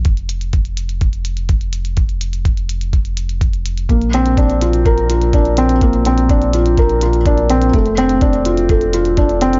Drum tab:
HH |xxxxxxxxxxxxxxxx|xxxxxxxxxxxxxxxx|xxxxxxxxxxxxxxxx|xxxxxxxxxxxxxxxx|
BD |o---o---o---o---|o---o---o---o---|o---o---o---o---|o---o---o---o---|

HH |xxxxxxxxxxxxxxxx|
BD |o---o---o---o---|